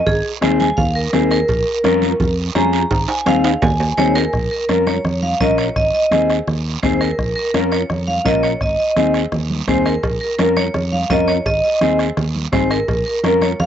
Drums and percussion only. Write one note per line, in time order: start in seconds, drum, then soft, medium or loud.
0.07 bombo low medium
0.07 cowbell loud
0.07 low conga medium
0.07 long guiro medium
0.42 bombo rim medium
0.42 cowbell medium
0.42 high conga medium
0.42 short guiro medium
0.60 high conga medium
0.60 short guiro medium
0.78 bombo low medium
0.78 cowbell medium
0.78 low conga medium
0.78 long guiro medium
1.13 bombo rim medium
1.13 cowbell medium
1.13 high conga medium
1.13 low timbale medium
1.13 short guiro medium
1.31 bombo rim medium
1.31 short guiro medium
1.48 bombo low medium
1.48 cowbell loud
1.48 long guiro medium
1.84 bombo rim medium
1.84 cowbell medium
1.84 high conga medium
1.84 short guiro medium
2.02 high conga medium
2.02 short guiro medium
2.20 bombo low medium
2.20 cowbell medium
2.20 low conga medium
2.20 long guiro medium
2.55 bombo rim medium
2.55 cowbell medium
2.55 high conga medium
2.55 low timbale medium
2.55 short guiro medium
2.73 short guiro medium
2.91 bombo low medium
2.91 cowbell loud
2.91 high timbale medium
2.91 long guiro medium
3.08 high timbale loud
3.26 bombo rim medium
3.26 cowbell medium
3.26 high conga medium
3.26 high timbale medium
3.26 short guiro medium
3.44 high timbale medium
3.44 short guiro medium
3.62 bombo low medium
3.62 cowbell medium
3.62 low conga medium
3.62 low timbale loud
3.62 long guiro medium
3.80 low timbale medium
3.97 bombo rim medium
3.97 cowbell medium
3.97 high conga medium
3.97 low timbale medium
3.97 short guiro medium
4.15 low timbale medium
4.15 short guiro medium
4.33 bombo low medium
4.33 bombo rim medium
4.33 long guiro medium
4.51 high conga soft
4.69 bombo rim medium
4.69 high conga medium
4.69 short guiro medium
4.87 bombo rim medium
4.87 high conga medium
4.87 short guiro medium
5.05 bombo rim medium
5.05 high conga soft
5.05 low conga medium
5.05 long guiro medium
5.22 high conga medium
5.40 bombo low medium
5.40 bombo rim medium
5.40 high conga medium
5.40 short guiro medium
5.58 bombo rim medium
5.58 short guiro medium
5.76 bombo low medium
5.76 bombo rim medium
5.76 low conga medium
5.76 long guiro medium
5.94 high conga soft
6.12 bombo rim medium
6.12 high conga medium
6.12 short guiro medium
6.30 bombo rim medium
6.30 short guiro medium
6.47 bombo rim medium
6.47 high conga soft
6.47 low conga medium
6.47 long guiro medium
6.83 bombo low medium
6.83 bombo rim medium
6.83 high conga medium
6.83 low conga medium
6.83 short guiro medium
7.01 bombo rim medium
7.01 short guiro medium
7.19 bombo low medium
7.19 bombo rim medium
7.19 long guiro medium
7.37 high conga soft
7.54 bombo rim medium
7.54 high conga medium
7.54 short guiro medium
7.72 bombo rim medium
7.72 short guiro medium
7.90 bombo rim medium
7.90 high conga soft
7.90 low conga medium
7.90 long guiro medium
8.08 high conga medium
8.25 bombo low medium
8.25 bombo rim medium
8.25 high conga medium
8.25 short guiro medium
8.43 bombo rim medium
8.43 short guiro medium
8.61 bombo low medium
8.61 bombo rim medium
8.61 long guiro medium
8.79 high conga soft
8.96 bombo rim medium
8.96 high conga medium
8.96 short guiro medium
9.14 bombo rim medium
9.14 short guiro medium
9.32 bombo rim medium
9.32 high conga soft
9.32 low conga medium
9.32 long guiro medium
9.50 high conga medium
9.68 bombo low medium
9.68 bombo rim medium
9.68 high conga medium
9.68 low conga medium
9.68 short guiro medium
9.86 bombo rim medium
9.86 short guiro medium
10.03 bombo low medium
10.03 bombo rim medium
10.03 cowbell loud
10.03 long guiro medium
10.21 high conga soft
10.38 bombo rim medium
10.38 cowbell medium
10.38 high conga medium
10.38 short guiro medium
10.57 bombo rim medium
10.57 high conga medium
10.57 short guiro medium
10.74 bombo rim medium
10.74 cowbell medium
10.74 high conga soft
10.74 low conga medium
10.74 long guiro medium
10.93 high conga medium
11.10 bombo low medium
11.10 bombo rim medium
11.10 cowbell medium
11.10 high conga medium
11.10 low timbale medium
11.10 short guiro medium
11.28 bombo rim medium
11.28 short guiro medium
11.46 bombo low medium
11.46 bombo rim medium
11.46 cowbell loud
11.46 long guiro medium
11.64 high conga soft
11.81 bombo rim medium
11.81 cowbell medium
11.81 high conga medium
11.81 short guiro medium
11.99 bombo rim medium
11.99 short guiro medium
12.17 bombo rim medium
12.17 cowbell medium
12.17 high conga soft
12.17 low conga medium
12.17 long guiro medium
12.35 high conga medium
12.53 bombo low medium
12.53 bombo rim medium
12.53 cowbell medium
12.53 high conga medium
12.53 low conga medium
12.53 low timbale medium
12.53 short guiro medium
12.71 bombo rim medium
12.71 short guiro medium
12.88 bombo low medium
12.88 bombo rim medium
12.88 cowbell medium
12.88 long guiro medium
13.06 high conga soft
13.24 bombo rim medium
13.24 cowbell medium
13.24 high conga medium
13.24 short guiro medium
13.42 bombo rim medium
13.42 high conga medium
13.42 short guiro medium
13.60 bombo rim medium
13.60 cowbell medium
13.60 high conga soft
13.60 low conga medium
13.60 long guiro medium